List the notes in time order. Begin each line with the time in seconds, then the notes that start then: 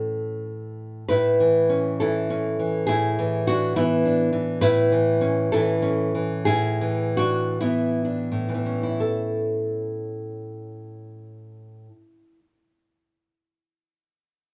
Already playing: A2 A3 C#4 A4
1.08 A2 E4 B4
1.40 E3
1.69 C#4
2.00 E3 E4 A4
2.30 C#4
2.59 E3
2.87 A2 E4 G#4
3.19 E3
3.47 D4 F#4
3.76 E3 B3 E4
4.05 D4
4.33 E3
4.61 A2 E4 B4
4.92 E3
5.21 C#4
5.52 E3 E4 A4
5.82 C#4
6.15 E3
6.45 A2 E4 G#4
6.81 E3
7.17 D4 F#4
7.61 E3 B3 E4
8.05 D4
8.32 A2
8.49 E3
8.54 E3
8.66 C#4
8.83 E4
9.00 A4